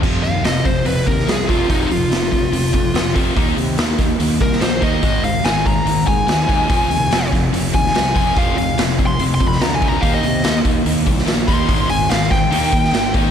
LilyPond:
<<
  \new Staff \with { instrumentName = "Lead electric guitar" } { \time 4/4 \key f \minor \tempo 4 = 144 r8 f''8 ees''8 c''8 b'8 bes'8 aes'8 f'8 | ees'8 f'2. r8 | r2 r8 bes'8 c''8 ees''8~ | ees''8 f''8 aes''8 bes''4 aes''4.~ |
aes''4. r4 aes''4 aes''8 | f''8 f''8 \tuplet 3/2 { r4 c'''8 r8 c'''8 b''8 bes''8 aes''8 bes''8 } | \tuplet 3/2 { f''8 ees''4~ } ees''8 r2 c'''8~ | c'''8 aes''8 f''8 g''2 r8 | }
  \new Staff \with { instrumentName = "Distorted electric guitar" } { \clef bass \time 4/4 \key f \minor <f, c f>8 <f, c>8 <f, c>8 <f, c>8 <f, c>8 <f, c>8 <f, c>8 <f, c f>8 | <f, c f>8 <f, c>8 <f, c>8 <f, c>8 <f, c>8 <f, c>8 <f, c>8 <f, c f>8 | <ees bes ees'>8 <ees bes>8 <ees bes>8 <ees bes>8 <ees bes>8 <ees bes>8 <ees bes>8 <ees bes ees'>8 | <aes, ees aes>8 <aes, ees>8 <aes, ees>8 <aes, ees>8 <aes, ees>8 <aes, ees>8 <aes, ees>8 <aes, ees aes>8 |
<f, c f>8 <f, c>8 <f, c>8 <f, c>8 <f, c>8 <f, c>8 <f, c>8 <f, c f>8 | <f, c f>8 <f, c>8 <f, c>8 <f, c>8 <f, c>8 <f, c>8 <f, c>8 <f, c f>8 | <ees bes ees'>8 <ees bes>8 <ees bes>8 <ees bes>8 <ees bes>8 <ees bes>8 <ees bes>8 <ees bes ees'>8 | <aes, ees aes>8 <aes, ees>8 <aes, ees>8 <aes, ees>8 <ees bes ees'>8 <ees bes>8 <ees bes>8 <ees bes ees'>8 | }
  \new Staff \with { instrumentName = "Distorted electric guitar" } { \clef bass \time 4/4 \key f \minor <f, c f>8 <f, c>8 <f, c>8 <f, c>8 <f, c>8 <f, c>8 <f, c>8 <f, c f>8 | <f, c f>8 <f, c>8 <f, c>8 <f, c>8 <f, c>8 <f, c>8 <f, c>8 <f, c f>8 | <ees bes ees'>8 <ees bes>8 <ees bes>8 <ees bes>8 <ees bes>8 <ees bes>8 <ees bes>8 <ees bes ees'>8 | <aes, ees aes>8 <aes, ees>8 <aes, ees>8 <aes, ees>8 <aes, ees>8 <aes, ees>8 <aes, ees>8 <aes, ees aes>8 |
<f, c f>8 <f, c>8 <f, c>8 <f, c>8 <f, c>8 <f, c>8 <f, c>8 <f, c f>8 | <f, c f>8 <f, c>8 <f, c>8 <f, c>8 <f, c>8 <f, c>8 <f, c>8 <f, c f>8 | <ees bes ees'>8 <ees bes>8 <ees bes>8 <ees bes>8 <ees bes>8 <ees bes>8 <ees bes>8 <ees bes ees'>8 | <aes, ees aes>8 <aes, ees>8 <aes, ees>8 <aes, ees>8 <ees bes ees'>8 <ees bes>8 <ees bes>8 <ees bes ees'>8 | }
  \new Staff \with { instrumentName = "Fingered electric bass" } { \clef bass \time 4/4 \key f \minor f,,8 ees,8 f,,8 f,,8 f,,8 ees,8 c,8 f,,8 | f,,8 f,,8 f,,4 f,,8 f,8 f,,4 | ees,8 c8 ees,8 ees,8 ees,8 c,8 bes,,8 ees,8 | aes,,8 aes,,8 aes,,4 aes,,8 aes,8 ees,4 |
f,,8 ees,8 f,,8 f,,8 f,,8 ees,8 c,8 f,,8 | f,,8 f,,8 f,,4 f,,8 f,8 d,4 | ees,8 c8 ees,8 ees,8 ees,8 c,8 bes,,8 ees,8 | aes,,8 aes,,8 aes,,4 ees,8 ees8 aes,,4 | }
  \new DrumStaff \with { instrumentName = "Drums" } \drummode { \time 4/4 <cymc bd>8 hho8 <hho sn>8 <hho bd>8 hho8 <hho bd>16 sn16 <hho sn>8 <hho bd>8 | <hho bd>8 hho8 <hho sn>8 <hho bd>8 hho8 <hho bd>8 <hho sn>8 <hho bd>8 | <hho bd>8 hho8 <hho sn>8 <hho bd sn>8 hho8 <hho bd>16 sn16 <hho sn>8 <hho bd>8 | <hho bd>8 hho8 <hho sn>8 <hho bd>8 hho8 <hho bd>8 <hho sn>8 <hho bd>8 |
<hho bd>8 hho8 <hho sn>8 <hho bd sn>8 hho8 <hho bd>16 sn16 <hho sn>8 <hho bd>8 | <hho bd>8 hho8 <hho sn>8 <hho bd>8 hho8 <hho bd>16 sn16 <hho sn>8 <hho bd>8 | <hho bd>8 hho8 <hho sn>8 <hho bd>8 hho8 <hho bd>16 sn16 <hho sn>8 <hho bd>8 | <hho bd>8 hho8 <hho sn>8 <hho bd sn>8 hho8 <hho bd>16 sn16 <hho sn>8 <hho bd>8 | }
>>